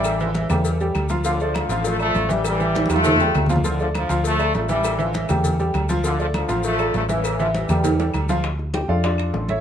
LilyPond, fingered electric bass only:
\new Staff \with { instrumentName = "Fingered electric bass" } { \clef bass \time 4/4 \key d \minor \tempo 4 = 200 a,,4. e,4. d,4~ | d,4. a,,4. a,,4~ | a,,4. e,4. d,4~ | d,4. d,4. a,,4~ |
a,,4. e,4. d,4~ | d,4. a,,4. a,,4~ | a,,4. e,4. d,4~ | d,4. f,4. a,,4 | }